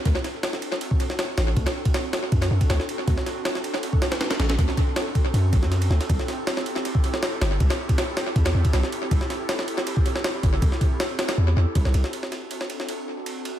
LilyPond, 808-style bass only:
\new Staff \with { instrumentName = "808-style bass" } { \clef bass \time 4/4 \key d \mixolydian \tempo 4 = 159 d,16 r2. r16 a,,8 | d,16 r4. r16 fis,8 fis,16 r16 d,16 r8. | d,16 r2. r16 a,,8 | d,16 r4. r16 fis,8 a,,16 fis,8. d,16 r16 |
c,16 r2. r16 g,,8 | c,16 r4. r16 e,8 e,16 r16 c,16 r8. | c,16 r2. r16 g,,8 | c,16 r4. r16 e,8 e,16 r16 c,16 c,16 c,16 r16 |
r1 | }